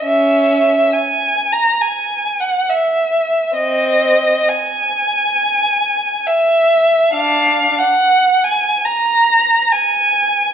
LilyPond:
\new Staff \with { instrumentName = "Violin" } { \time 4/4 \key dis \phrygian \tempo 4 = 68 <cis' e''>4 \tuplet 3/2 { gis''4 ais''8 gis''4 fis''8 } e''4 | <bis dis''>4 gis''2 e''4 | \key aes \dorian <d' f''>8. ges''8. aes''8 bes''4 aes''4 | }